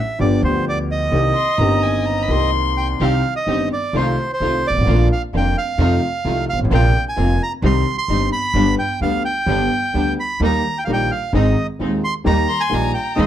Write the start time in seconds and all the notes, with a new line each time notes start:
0.00 E5
0.19 G1 G2 F3 B3 D4 G4 D5
0.41 D2 D3 F3 B3 D4 C5
0.45 G4
0.69 D5
0.91 D#5
1.12 C2 C3 D#3 A#3 C4 G4
1.35 C6
1.57 G1 G2 D#3 A#3 C4 G4 A#5
1.83 G#5
2.06 A#5
2.22 B5
2.28 C2 C3 D#3 A#3 C4 G4 C6
2.77 G5
3.00 C2 C3 D#3 G3 C4 D#4 G4 F5
3.36 D#5
3.46 G1 G2 D#3 G3 C4 D#4 G4
3.73 D5
3.93 C2 C3 D#3 A3 C4 D#4 F4 C5
4.33 C5
4.40 C2 C3 D#3 A3 C4 D#4 F4
4.67 G1 D5
4.76 G#1
4.81 A1
4.87 A#1 A#2 D3 F3 A#3 D4 F4
5.12 F5
5.33 F1 F2 D3 F3 A#3 D4 F4
5.37 G5
5.58 F5
5.78 F2 C3 F3 A3 D#4 F4
6.25 C2 C3 F3 A3 D#4 F4
6.49 G1 F5
6.59 G#1
6.64 A1
6.70 A#1 A#2 C3 F3 A#3 C4 F4
6.75 G5
7.09 G#5
7.16 F1 F2 C3 F3 A#3 C4 F4
7.43 A#5
7.62 C2 C3 D#3 G3 C4 D#4 G4 C6
7.98 C6
8.08 G1 G2 D#3 G3 C4 D#4 G4
8.32 B5
8.54 G1 G2 D3 G3 B3 D4 G4
8.79 G5
9.00 D2 D3 G3 B3 D4 G4 F5
9.25 G5
9.46 G1 G2 D3 G3 B3 D4 G4
9.93 D2 D3 G3 B3 D4 G4
10.20 B5
10.40 D#2 D#3 G3 A#3 D#4 G4
10.44 A#5
10.78 G5
10.85 A#1 A#2 D#3 G3 A#3 D#4 G4 F5
10.93 G5
11.11 F5
11.33 G#1 G#2 D#3 G#3 C4 D#4 G#4 D#5
11.79 D#1 D#2 D#3 G#3 C4 D#4 G#4
12.04 C6
12.24 D#2 D#3 G3 A#3 D#4 G4 A#5
12.49 C6
12.60 G#5
12.69 A#1 A#2 D#3 G3 A#3 D#4 G4
12.74 A#5
12.94 G5
13.16 D#2 D#3 G#3 C4 D#4 G#4 D#5
13.20 C6